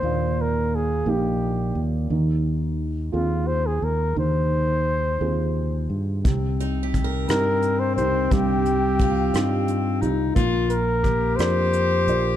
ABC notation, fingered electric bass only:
X:1
M:6/8
L:1/8
Q:3/8=58
K:Cm
V:1 name="Fingered electric bass" clef=bass
E,,3 B,,,2 E,, | E,,3 E,,2 E,, | E,,3 E,,2 G,, | C,,3 G,,2 C,, |
C,,3 G,,2 C,, | B,,,3 F,,2 B,,, |]